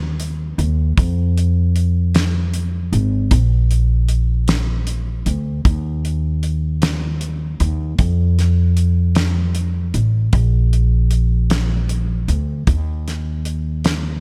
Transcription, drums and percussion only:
0.20 closed hi-hat medium
0.59 closed hi-hat soft
0.98 kick loud
0.98 closed hi-hat medium
1.38 closed hi-hat medium
1.76 closed hi-hat medium
2.15 snare loud
2.15 closed hi-hat medium
2.54 closed hi-hat medium
2.93 closed hi-hat medium
3.31 kick loud
3.31 closed hi-hat medium
3.71 closed hi-hat medium
4.09 closed hi-hat medium
4.48 snare loud
4.48 closed hi-hat medium
4.87 closed hi-hat medium
5.26 closed hi-hat medium
5.65 kick loud
5.65 closed hi-hat medium
6.05 closed hi-hat soft
6.43 closed hi-hat medium
6.82 snare loud
6.82 closed hi-hat medium
7.21 closed hi-hat medium
7.60 closed hi-hat medium
7.99 kick loud
7.99 closed hi-hat medium
8.39 snare soft
8.39 closed hi-hat soft
8.77 closed hi-hat medium
9.15 snare loud
9.15 closed hi-hat medium
9.55 closed hi-hat medium
9.94 closed hi-hat medium
10.33 kick loud
10.33 closed hi-hat medium
10.73 closed hi-hat soft
11.11 closed hi-hat medium
11.50 snare loud
11.50 closed hi-hat medium
11.89 closed hi-hat medium
12.29 closed hi-hat soft
12.67 kick loud
12.67 closed hi-hat medium
13.08 snare soft
13.08 closed hi-hat soft
13.45 closed hi-hat medium
13.84 snare loud
13.84 closed hi-hat medium

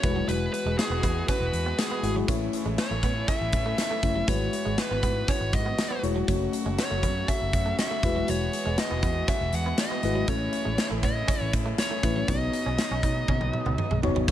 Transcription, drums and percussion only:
0.03 kick loud
0.03 closed hi-hat medium
0.29 closed hi-hat medium
0.54 closed hi-hat medium
0.79 snare loud
0.79 closed hi-hat medium
1.03 kick medium
1.03 closed hi-hat medium
1.28 kick medium
1.28 closed hi-hat medium
1.53 closed hi-hat medium
1.79 snare loud
1.79 closed hi-hat loud
2.04 closed hi-hat medium
2.28 kick loud
2.28 closed hi-hat medium
2.53 closed hi-hat medium
2.78 snare loud
2.78 closed hi-hat medium
3.03 kick medium
3.03 closed hi-hat medium
3.28 kick medium
3.28 closed hi-hat medium
3.53 kick medium
3.53 closed hi-hat medium
3.78 snare loud
3.78 closed hi-hat medium
4.03 kick medium
4.03 closed hi-hat medium
4.28 kick loud
4.28 closed hi-hat medium
4.53 closed hi-hat medium
4.78 snare loud
4.78 closed hi-hat medium
5.03 kick medium
5.03 closed hi-hat medium
5.28 kick medium
5.28 closed hi-hat medium
5.53 kick medium
5.53 closed hi-hat medium
5.79 snare loud
5.79 closed hi-hat medium
6.04 closed hi-hat medium
6.28 kick loud
6.28 closed hi-hat medium
6.53 closed hi-hat medium
6.79 snare loud
6.79 closed hi-hat medium
7.03 kick medium
7.03 closed hi-hat medium
7.28 kick medium
7.28 closed hi-hat medium
7.53 kick medium
7.53 closed hi-hat medium
7.79 snare loud
7.79 closed hi-hat medium
8.03 kick medium
8.03 closed hi-hat medium
8.28 closed hi-hat medium
8.53 closed hi-hat medium
8.78 snare loud
8.78 closed hi-hat medium
9.03 kick medium
9.03 closed hi-hat medium
9.28 kick medium
9.28 closed hi-hat medium
9.53 closed hi-hat medium
9.78 snare loud
9.78 closed hi-hat loud
10.03 closed hi-hat medium
10.28 kick loud
10.28 closed hi-hat medium
10.53 closed hi-hat medium
10.78 snare loud
10.78 closed hi-hat medium
11.03 kick medium
11.03 closed hi-hat medium
11.28 kick medium
11.28 closed hi-hat medium
11.53 kick medium
11.53 closed hi-hat medium
11.78 snare loud
11.78 closed hi-hat loud
12.03 kick medium
12.03 closed hi-hat medium
12.28 kick loud
12.28 closed hi-hat medium
12.53 closed hi-hat medium
12.78 snare loud
12.78 closed hi-hat medium
13.03 kick medium
13.03 closed hi-hat medium
13.28 kick medium
13.28 high tom medium
13.41 high tom medium
13.53 mid tom medium
13.66 mid tom medium
13.78 mid tom medium
13.91 mid tom medium
14.03 floor tom medium
14.16 floor tom medium
14.28 kick loud
14.28 tambourine soft

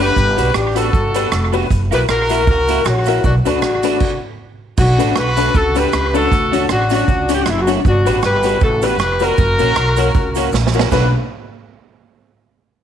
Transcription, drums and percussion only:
0.00 closed hi-hat medium
0.16 kick loud
0.16 cabasa medium
0.38 closed hi-hat medium
0.38 cabasa medium
0.54 cross-stick loud
0.54 cabasa medium
0.76 closed hi-hat loud
0.76 cabasa medium
0.93 kick loud
0.93 cabasa soft
1.14 closed hi-hat loud
1.14 cabasa medium
1.32 cross-stick loud
1.32 cabasa medium
1.53 open hi-hat medium
1.53 cabasa medium
1.70 kick loud
1.70 hi-hat pedal medium
1.70 cabasa medium
1.92 closed hi-hat medium
1.92 cabasa medium
2.08 cross-stick loud
2.08 cabasa medium
2.29 closed hi-hat medium
2.29 cabasa medium
2.47 kick loud
2.47 cabasa soft
2.68 closed hi-hat loud
2.68 cabasa medium
2.85 cross-stick loud
2.85 cabasa medium
3.06 closed hi-hat medium
3.06 cabasa medium
3.24 kick loud
3.24 cabasa medium
3.46 closed hi-hat medium
3.46 cabasa medium
3.62 cross-stick loud
3.62 cabasa medium
3.83 closed hi-hat loud
3.83 cabasa medium
4.00 kick loud
4.00 crash medium
4.77 kick loud
4.77 crash loud
4.77 cabasa medium
4.99 closed hi-hat medium
4.99 cabasa medium
5.16 cross-stick loud
5.16 cabasa medium
5.37 closed hi-hat loud
5.37 cabasa medium
5.55 kick loud
5.55 cabasa medium
5.75 closed hi-hat medium
5.75 cabasa medium
5.92 cross-stick loud
5.92 cabasa medium
6.15 open hi-hat soft
6.15 cabasa medium
6.32 kick loud
6.32 hi-hat pedal medium
6.32 cabasa medium
6.53 closed hi-hat medium
6.53 cabasa medium
6.69 cross-stick loud
6.69 cabasa medium
6.90 closed hi-hat loud
6.90 cabasa medium
7.08 kick loud
7.08 cabasa soft
7.29 closed hi-hat loud
7.29 cabasa medium
7.46 cross-stick loud
7.46 cabasa medium
7.67 closed hi-hat medium
7.67 cabasa medium
7.85 kick loud
7.85 cabasa medium
8.06 closed hi-hat medium
8.06 cabasa medium
8.22 cross-stick loud
8.22 cabasa medium
8.43 closed hi-hat medium
8.43 cabasa medium
8.61 kick loud
8.61 cabasa soft
8.82 closed hi-hat medium
8.82 cabasa medium
8.99 cross-stick loud
8.99 cabasa medium
9.20 closed hi-hat medium
9.20 cabasa medium
9.38 kick loud
9.38 cabasa medium
9.59 closed hi-hat medium
9.59 cabasa medium
9.75 cross-stick loud
9.75 cabasa medium
9.96 closed hi-hat loud
9.96 cabasa medium
10.14 kick loud
10.14 cabasa soft
10.35 closed hi-hat loud
10.35 cabasa medium
10.52 snare soft
10.52 cabasa medium
10.67 snare medium
10.73 cabasa medium
10.79 snare loud
10.91 kick loud
10.91 snare loud
10.91 crash medium
10.91 cabasa medium

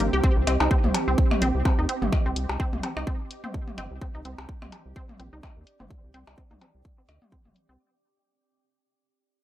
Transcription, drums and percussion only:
0.00 closed hi-hat medium
0.24 kick loud
0.47 closed hi-hat medium
0.47 percussion blips medium
0.60 percussion blips medium
0.71 kick loud
0.84 mid tom medium
0.94 closed hi-hat medium
0.94 percussion blips soft
1.18 kick loud
1.31 mid tom medium
1.31 percussion blips medium
1.42 closed hi-hat medium
1.65 kick loud
1.65 percussion blips soft
1.89 closed hi-hat medium
2.02 mid tom medium
2.12 kick loud
2.12 percussion blips medium
2.36 closed hi-hat medium
2.49 percussion blips medium
2.60 kick loud
2.73 mid tom medium
2.83 closed hi-hat medium
2.83 percussion blips soft
2.97 percussion blips medium
3.07 kick loud
3.31 closed hi-hat medium
3.44 mid tom medium
3.54 kick medium
3.68 mid tom medium
3.78 closed hi-hat medium
3.78 percussion blips medium
4.01 kick loud
4.25 closed hi-hat medium
4.38 percussion blips medium
4.49 kick medium
4.62 mid tom medium
4.62 percussion blips medium
4.72 closed hi-hat medium
4.72 percussion blips soft
4.96 kick loud
5.09 mid tom medium
5.20 closed hi-hat medium
5.43 kick medium
5.43 percussion blips medium
5.43 percussion blips soft
5.67 closed hi-hat medium
5.80 mid tom medium
5.91 kick loud
6.14 closed hi-hat medium
6.27 percussion blips medium
6.38 kick medium
6.51 mid tom medium
6.61 closed hi-hat medium
6.61 percussion blips soft
6.85 kick loud
7.09 closed hi-hat medium
7.09 percussion blips medium
7.22 mid tom medium
7.32 kick medium
7.45 mid tom medium
7.56 closed hi-hat medium

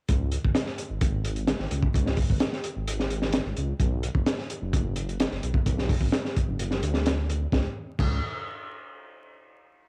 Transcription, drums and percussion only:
0.09 kick loud
0.09 closed hi-hat medium
0.32 closed hi-hat medium
0.45 kick medium
0.55 snare loud
0.55 closed hi-hat medium
0.66 snare soft
0.78 closed hi-hat medium
1.01 kick loud
1.01 closed hi-hat medium
1.25 closed hi-hat medium
1.36 closed hi-hat soft
1.48 snare loud
1.48 closed hi-hat medium
1.59 snare soft
1.71 closed hi-hat medium
1.83 kick medium
1.94 kick loud
1.94 closed hi-hat medium
2.06 snare soft
2.17 kick loud
2.17 open hi-hat medium
2.30 kick medium
2.40 snare loud
2.40 closed hi-hat medium
2.53 snare soft
2.64 closed hi-hat medium
2.87 closed hi-hat loud
3.00 snare soft
3.10 closed hi-hat medium
3.22 snare soft
3.33 snare loud
3.33 closed hi-hat medium
3.57 closed hi-hat medium
3.80 kick loud
3.80 closed hi-hat medium
4.03 closed hi-hat medium
4.15 kick medium
4.26 snare loud
4.26 closed hi-hat medium
4.38 snare soft
4.50 closed hi-hat medium
4.73 kick loud
4.73 closed hi-hat medium
4.96 closed hi-hat medium
5.09 closed hi-hat soft
5.20 snare loud
5.20 closed hi-hat medium
5.31 snare soft
5.43 closed hi-hat medium
5.54 kick loud
5.66 kick loud
5.66 closed hi-hat medium
5.78 snare soft
5.89 kick loud
5.89 open hi-hat medium
6.01 kick loud
6.12 snare loud
6.12 closed hi-hat medium
6.25 snare soft
6.37 kick loud
6.37 closed hi-hat medium
6.59 closed hi-hat medium
6.71 snare soft
6.83 closed hi-hat medium
6.94 snare soft
7.06 snare loud
7.06 closed hi-hat medium
7.30 closed hi-hat medium
7.52 kick loud
7.52 snare medium
7.99 kick loud
7.99 crash medium

